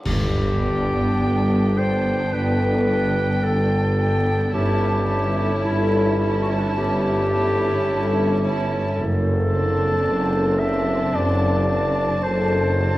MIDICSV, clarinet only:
0, 0, Header, 1, 2, 480
1, 0, Start_track
1, 0, Key_signature, 1, "major"
1, 0, Tempo, 1147228
1, 26, Time_signature, 4, 2, 24, 8
1, 506, Tempo, 1115242
1, 2906, Tempo, 1092896
1, 5626, End_track
2, 0, Start_track
2, 0, Title_t, "Clarinet"
2, 0, Program_c, 0, 71
2, 27, Note_on_c, 0, 67, 90
2, 750, Note_on_c, 0, 72, 80
2, 757, Note_off_c, 0, 67, 0
2, 989, Note_on_c, 0, 71, 82
2, 995, Note_off_c, 0, 72, 0
2, 1462, Note_on_c, 0, 69, 83
2, 1468, Note_off_c, 0, 71, 0
2, 1937, Note_off_c, 0, 69, 0
2, 1939, Note_on_c, 0, 67, 82
2, 2409, Note_off_c, 0, 67, 0
2, 2415, Note_on_c, 0, 64, 79
2, 2749, Note_on_c, 0, 66, 58
2, 2756, Note_off_c, 0, 64, 0
2, 2787, Note_on_c, 0, 64, 68
2, 2793, Note_off_c, 0, 66, 0
2, 2825, Note_on_c, 0, 62, 68
2, 2832, Note_off_c, 0, 64, 0
2, 2861, Note_on_c, 0, 64, 62
2, 2867, Note_off_c, 0, 62, 0
2, 2902, Note_on_c, 0, 67, 97
2, 2908, Note_off_c, 0, 64, 0
2, 3744, Note_off_c, 0, 67, 0
2, 3858, Note_on_c, 0, 69, 84
2, 4578, Note_on_c, 0, 76, 76
2, 4585, Note_off_c, 0, 69, 0
2, 4826, Note_on_c, 0, 74, 78
2, 4833, Note_off_c, 0, 76, 0
2, 5296, Note_on_c, 0, 72, 78
2, 5302, Note_off_c, 0, 74, 0
2, 5626, Note_off_c, 0, 72, 0
2, 5626, End_track
0, 0, End_of_file